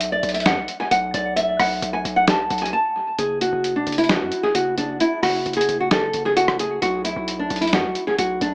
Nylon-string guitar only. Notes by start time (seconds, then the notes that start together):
0.12 D5
0.34 E5
0.46 F#5
0.80 G#5
0.91 F#5
1.14 D5
1.36 E5
1.60 F#5
1.93 G#5
2.16 F#5
2.28 A5
2.62 G#5
2.73 A5
3.19 G#4
3.41 F#4
3.76 D4
3.98 E4
4.10 F#4
4.43 G#4
4.55 F#4
4.78 D4
5.01 E4
5.23 F#4
5.57 G#4
5.80 F#4
5.92 A4
6.26 G#4
6.37 F#4
6.60 G#4
6.82 F#4
7.04 E4
7.39 D4
7.61 E4
7.73 F#4
8.07 G#4
8.18 F#4
8.42 D4